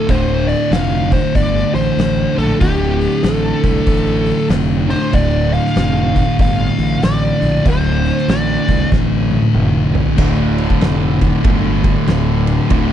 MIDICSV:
0, 0, Header, 1, 6, 480
1, 0, Start_track
1, 0, Key_signature, -1, "minor"
1, 0, Tempo, 630915
1, 65, Time_signature, 4, 2, 24, 8
1, 9834, End_track
2, 0, Start_track
2, 0, Title_t, "Lead electric guitar"
2, 0, Program_c, 0, 29
2, 0, Note_on_c, 0, 69, 85
2, 78, Note_off_c, 0, 69, 0
2, 78, Note_on_c, 0, 72, 95
2, 354, Note_off_c, 0, 72, 0
2, 368, Note_on_c, 0, 74, 89
2, 532, Note_off_c, 0, 74, 0
2, 553, Note_on_c, 0, 77, 98
2, 831, Note_off_c, 0, 77, 0
2, 860, Note_on_c, 0, 72, 82
2, 1033, Note_off_c, 0, 72, 0
2, 1036, Note_on_c, 0, 74, 83
2, 1312, Note_off_c, 0, 74, 0
2, 1329, Note_on_c, 0, 72, 90
2, 1811, Note_on_c, 0, 69, 85
2, 1823, Note_off_c, 0, 72, 0
2, 1978, Note_off_c, 0, 69, 0
2, 1981, Note_on_c, 0, 67, 89
2, 2461, Note_off_c, 0, 67, 0
2, 2464, Note_on_c, 0, 69, 78
2, 3394, Note_off_c, 0, 69, 0
2, 3730, Note_on_c, 0, 72, 90
2, 3911, Note_off_c, 0, 72, 0
2, 3913, Note_on_c, 0, 74, 99
2, 4208, Note_off_c, 0, 74, 0
2, 4211, Note_on_c, 0, 77, 104
2, 4836, Note_off_c, 0, 77, 0
2, 4878, Note_on_c, 0, 77, 98
2, 5356, Note_off_c, 0, 77, 0
2, 5359, Note_on_c, 0, 74, 96
2, 5802, Note_off_c, 0, 74, 0
2, 5849, Note_on_c, 0, 72, 91
2, 6313, Note_on_c, 0, 74, 77
2, 6332, Note_off_c, 0, 72, 0
2, 6759, Note_off_c, 0, 74, 0
2, 9834, End_track
3, 0, Start_track
3, 0, Title_t, "Distorted electric guitar"
3, 0, Program_c, 1, 30
3, 0, Note_on_c, 1, 50, 83
3, 58, Note_on_c, 1, 38, 89
3, 71, Note_on_c, 1, 45, 89
3, 85, Note_off_c, 1, 50, 0
3, 88, Note_on_c, 1, 50, 105
3, 1783, Note_off_c, 1, 50, 0
3, 1786, Note_on_c, 1, 50, 86
3, 1790, Note_off_c, 1, 45, 0
3, 1800, Note_on_c, 1, 45, 83
3, 1813, Note_off_c, 1, 38, 0
3, 1816, Note_on_c, 1, 38, 68
3, 1964, Note_off_c, 1, 38, 0
3, 1967, Note_on_c, 1, 38, 90
3, 1970, Note_off_c, 1, 45, 0
3, 1983, Note_on_c, 1, 45, 99
3, 1996, Note_off_c, 1, 50, 0
3, 1999, Note_on_c, 1, 50, 98
3, 3704, Note_off_c, 1, 50, 0
3, 3707, Note_on_c, 1, 50, 88
3, 3709, Note_off_c, 1, 45, 0
3, 3728, Note_on_c, 1, 45, 76
3, 3733, Note_off_c, 1, 38, 0
3, 3736, Note_on_c, 1, 38, 65
3, 3885, Note_off_c, 1, 38, 0
3, 3888, Note_on_c, 1, 38, 86
3, 3890, Note_off_c, 1, 45, 0
3, 3899, Note_on_c, 1, 45, 90
3, 3909, Note_off_c, 1, 50, 0
3, 3912, Note_on_c, 1, 50, 106
3, 5628, Note_off_c, 1, 45, 0
3, 5630, Note_off_c, 1, 50, 0
3, 5633, Note_on_c, 1, 50, 83
3, 5650, Note_on_c, 1, 45, 77
3, 5662, Note_off_c, 1, 38, 0
3, 5665, Note_on_c, 1, 38, 72
3, 5813, Note_off_c, 1, 38, 0
3, 5816, Note_off_c, 1, 45, 0
3, 5816, Note_on_c, 1, 38, 86
3, 5835, Note_on_c, 1, 45, 98
3, 5844, Note_off_c, 1, 50, 0
3, 5848, Note_on_c, 1, 50, 96
3, 7547, Note_off_c, 1, 38, 0
3, 7552, Note_off_c, 1, 50, 0
3, 7557, Note_off_c, 1, 45, 0
3, 7561, Note_on_c, 1, 50, 90
3, 7579, Note_on_c, 1, 45, 75
3, 7587, Note_on_c, 1, 38, 72
3, 7728, Note_off_c, 1, 38, 0
3, 7732, Note_off_c, 1, 50, 0
3, 7737, Note_on_c, 1, 38, 82
3, 7741, Note_off_c, 1, 45, 0
3, 7753, Note_on_c, 1, 45, 93
3, 7766, Note_on_c, 1, 50, 102
3, 9652, Note_off_c, 1, 38, 0
3, 9655, Note_on_c, 1, 38, 86
3, 9660, Note_off_c, 1, 45, 0
3, 9675, Note_on_c, 1, 45, 95
3, 9684, Note_off_c, 1, 50, 0
3, 9687, Note_on_c, 1, 50, 107
3, 9834, Note_off_c, 1, 38, 0
3, 9834, Note_off_c, 1, 45, 0
3, 9834, Note_off_c, 1, 50, 0
3, 9834, End_track
4, 0, Start_track
4, 0, Title_t, "Distorted electric guitar"
4, 0, Program_c, 2, 30
4, 8690, Note_on_c, 2, 38, 72
4, 8700, Note_on_c, 2, 45, 85
4, 8706, Note_on_c, 2, 50, 90
4, 9653, Note_off_c, 2, 45, 0
4, 9659, Note_off_c, 2, 38, 0
4, 9675, Note_off_c, 2, 50, 0
4, 9834, End_track
5, 0, Start_track
5, 0, Title_t, "Fingered electric bass"
5, 0, Program_c, 3, 33
5, 65, Note_on_c, 3, 26, 93
5, 400, Note_off_c, 3, 26, 0
5, 539, Note_on_c, 3, 29, 86
5, 876, Note_off_c, 3, 29, 0
5, 1024, Note_on_c, 3, 31, 96
5, 1236, Note_off_c, 3, 31, 0
5, 1325, Note_on_c, 3, 33, 84
5, 1450, Note_off_c, 3, 33, 0
5, 1499, Note_on_c, 3, 33, 88
5, 1712, Note_off_c, 3, 33, 0
5, 1804, Note_on_c, 3, 34, 83
5, 1929, Note_off_c, 3, 34, 0
5, 1986, Note_on_c, 3, 26, 101
5, 2321, Note_off_c, 3, 26, 0
5, 2460, Note_on_c, 3, 33, 87
5, 2673, Note_off_c, 3, 33, 0
5, 2765, Note_on_c, 3, 36, 82
5, 2890, Note_off_c, 3, 36, 0
5, 2942, Note_on_c, 3, 33, 98
5, 3278, Note_off_c, 3, 33, 0
5, 3417, Note_on_c, 3, 29, 88
5, 3755, Note_off_c, 3, 29, 0
5, 3900, Note_on_c, 3, 26, 98
5, 4237, Note_off_c, 3, 26, 0
5, 4379, Note_on_c, 3, 29, 84
5, 4717, Note_off_c, 3, 29, 0
5, 4863, Note_on_c, 3, 31, 93
5, 5075, Note_off_c, 3, 31, 0
5, 5161, Note_on_c, 3, 33, 92
5, 5287, Note_off_c, 3, 33, 0
5, 5341, Note_on_c, 3, 33, 90
5, 5554, Note_off_c, 3, 33, 0
5, 5642, Note_on_c, 3, 34, 85
5, 5768, Note_off_c, 3, 34, 0
5, 5824, Note_on_c, 3, 26, 99
5, 6160, Note_off_c, 3, 26, 0
5, 6299, Note_on_c, 3, 33, 83
5, 6513, Note_off_c, 3, 33, 0
5, 6607, Note_on_c, 3, 36, 85
5, 6732, Note_off_c, 3, 36, 0
5, 6785, Note_on_c, 3, 33, 99
5, 7121, Note_off_c, 3, 33, 0
5, 7258, Note_on_c, 3, 29, 88
5, 7597, Note_off_c, 3, 29, 0
5, 7745, Note_on_c, 3, 26, 103
5, 8128, Note_off_c, 3, 26, 0
5, 8215, Note_on_c, 3, 29, 90
5, 8602, Note_off_c, 3, 29, 0
5, 8707, Note_on_c, 3, 31, 98
5, 9089, Note_off_c, 3, 31, 0
5, 9182, Note_on_c, 3, 26, 89
5, 9566, Note_off_c, 3, 26, 0
5, 9666, Note_on_c, 3, 26, 104
5, 9834, Note_off_c, 3, 26, 0
5, 9834, End_track
6, 0, Start_track
6, 0, Title_t, "Drums"
6, 67, Note_on_c, 9, 46, 74
6, 68, Note_on_c, 9, 36, 105
6, 143, Note_off_c, 9, 46, 0
6, 145, Note_off_c, 9, 36, 0
6, 372, Note_on_c, 9, 46, 50
6, 448, Note_off_c, 9, 46, 0
6, 547, Note_on_c, 9, 46, 76
6, 555, Note_on_c, 9, 38, 116
6, 623, Note_off_c, 9, 46, 0
6, 631, Note_off_c, 9, 38, 0
6, 850, Note_on_c, 9, 46, 58
6, 852, Note_on_c, 9, 36, 88
6, 927, Note_off_c, 9, 46, 0
6, 928, Note_off_c, 9, 36, 0
6, 1029, Note_on_c, 9, 36, 105
6, 1030, Note_on_c, 9, 46, 72
6, 1105, Note_off_c, 9, 36, 0
6, 1106, Note_off_c, 9, 46, 0
6, 1192, Note_on_c, 9, 38, 34
6, 1268, Note_off_c, 9, 38, 0
6, 1334, Note_on_c, 9, 46, 62
6, 1410, Note_off_c, 9, 46, 0
6, 1511, Note_on_c, 9, 46, 75
6, 1519, Note_on_c, 9, 38, 105
6, 1587, Note_off_c, 9, 46, 0
6, 1595, Note_off_c, 9, 38, 0
6, 1815, Note_on_c, 9, 46, 62
6, 1891, Note_off_c, 9, 46, 0
6, 1986, Note_on_c, 9, 46, 80
6, 1987, Note_on_c, 9, 36, 109
6, 2062, Note_off_c, 9, 46, 0
6, 2063, Note_off_c, 9, 36, 0
6, 2290, Note_on_c, 9, 46, 59
6, 2366, Note_off_c, 9, 46, 0
6, 2460, Note_on_c, 9, 46, 83
6, 2468, Note_on_c, 9, 38, 113
6, 2536, Note_off_c, 9, 46, 0
6, 2544, Note_off_c, 9, 38, 0
6, 2766, Note_on_c, 9, 46, 62
6, 2767, Note_on_c, 9, 36, 87
6, 2842, Note_off_c, 9, 46, 0
6, 2843, Note_off_c, 9, 36, 0
6, 2940, Note_on_c, 9, 46, 79
6, 2944, Note_on_c, 9, 36, 107
6, 3016, Note_off_c, 9, 46, 0
6, 3020, Note_off_c, 9, 36, 0
6, 3239, Note_on_c, 9, 46, 59
6, 3315, Note_off_c, 9, 46, 0
6, 3418, Note_on_c, 9, 46, 75
6, 3426, Note_on_c, 9, 38, 107
6, 3494, Note_off_c, 9, 46, 0
6, 3502, Note_off_c, 9, 38, 0
6, 3729, Note_on_c, 9, 46, 59
6, 3805, Note_off_c, 9, 46, 0
6, 3905, Note_on_c, 9, 36, 105
6, 3905, Note_on_c, 9, 46, 71
6, 3981, Note_off_c, 9, 36, 0
6, 3981, Note_off_c, 9, 46, 0
6, 4212, Note_on_c, 9, 46, 52
6, 4288, Note_off_c, 9, 46, 0
6, 4307, Note_on_c, 9, 38, 34
6, 4380, Note_on_c, 9, 46, 74
6, 4384, Note_off_c, 9, 38, 0
6, 4389, Note_on_c, 9, 38, 117
6, 4457, Note_off_c, 9, 46, 0
6, 4465, Note_off_c, 9, 38, 0
6, 4684, Note_on_c, 9, 46, 54
6, 4687, Note_on_c, 9, 36, 86
6, 4760, Note_off_c, 9, 46, 0
6, 4763, Note_off_c, 9, 36, 0
6, 4862, Note_on_c, 9, 46, 71
6, 4864, Note_on_c, 9, 36, 106
6, 4938, Note_off_c, 9, 46, 0
6, 4940, Note_off_c, 9, 36, 0
6, 5163, Note_on_c, 9, 46, 57
6, 5239, Note_off_c, 9, 46, 0
6, 5344, Note_on_c, 9, 46, 77
6, 5352, Note_on_c, 9, 38, 109
6, 5420, Note_off_c, 9, 46, 0
6, 5428, Note_off_c, 9, 38, 0
6, 5645, Note_on_c, 9, 46, 58
6, 5721, Note_off_c, 9, 46, 0
6, 5823, Note_on_c, 9, 46, 82
6, 5826, Note_on_c, 9, 36, 109
6, 5899, Note_off_c, 9, 46, 0
6, 5902, Note_off_c, 9, 36, 0
6, 6125, Note_on_c, 9, 46, 59
6, 6201, Note_off_c, 9, 46, 0
6, 6224, Note_on_c, 9, 38, 33
6, 6300, Note_off_c, 9, 38, 0
6, 6303, Note_on_c, 9, 46, 85
6, 6312, Note_on_c, 9, 38, 113
6, 6380, Note_off_c, 9, 46, 0
6, 6388, Note_off_c, 9, 38, 0
6, 6603, Note_on_c, 9, 46, 61
6, 6608, Note_on_c, 9, 36, 87
6, 6679, Note_off_c, 9, 46, 0
6, 6684, Note_off_c, 9, 36, 0
6, 6786, Note_on_c, 9, 36, 105
6, 6794, Note_on_c, 9, 38, 59
6, 6862, Note_off_c, 9, 36, 0
6, 6870, Note_off_c, 9, 38, 0
6, 7083, Note_on_c, 9, 48, 72
6, 7159, Note_off_c, 9, 48, 0
6, 7171, Note_on_c, 9, 48, 72
6, 7247, Note_off_c, 9, 48, 0
6, 7262, Note_on_c, 9, 47, 82
6, 7338, Note_off_c, 9, 47, 0
6, 7571, Note_on_c, 9, 43, 105
6, 7647, Note_off_c, 9, 43, 0
6, 7657, Note_on_c, 9, 43, 81
6, 7733, Note_off_c, 9, 43, 0
6, 7744, Note_on_c, 9, 49, 120
6, 7748, Note_on_c, 9, 36, 116
6, 7820, Note_off_c, 9, 49, 0
6, 7824, Note_off_c, 9, 36, 0
6, 8051, Note_on_c, 9, 51, 70
6, 8127, Note_off_c, 9, 51, 0
6, 8141, Note_on_c, 9, 36, 83
6, 8217, Note_off_c, 9, 36, 0
6, 8226, Note_on_c, 9, 51, 102
6, 8234, Note_on_c, 9, 38, 118
6, 8302, Note_off_c, 9, 51, 0
6, 8310, Note_off_c, 9, 38, 0
6, 8531, Note_on_c, 9, 36, 86
6, 8532, Note_on_c, 9, 51, 73
6, 8607, Note_off_c, 9, 36, 0
6, 8609, Note_off_c, 9, 51, 0
6, 8705, Note_on_c, 9, 51, 102
6, 8708, Note_on_c, 9, 36, 112
6, 8781, Note_off_c, 9, 51, 0
6, 8784, Note_off_c, 9, 36, 0
6, 9009, Note_on_c, 9, 51, 74
6, 9011, Note_on_c, 9, 36, 91
6, 9085, Note_off_c, 9, 51, 0
6, 9087, Note_off_c, 9, 36, 0
6, 9186, Note_on_c, 9, 51, 102
6, 9195, Note_on_c, 9, 38, 112
6, 9262, Note_off_c, 9, 51, 0
6, 9271, Note_off_c, 9, 38, 0
6, 9489, Note_on_c, 9, 51, 81
6, 9565, Note_off_c, 9, 51, 0
6, 9663, Note_on_c, 9, 51, 104
6, 9668, Note_on_c, 9, 36, 109
6, 9739, Note_off_c, 9, 51, 0
6, 9744, Note_off_c, 9, 36, 0
6, 9834, End_track
0, 0, End_of_file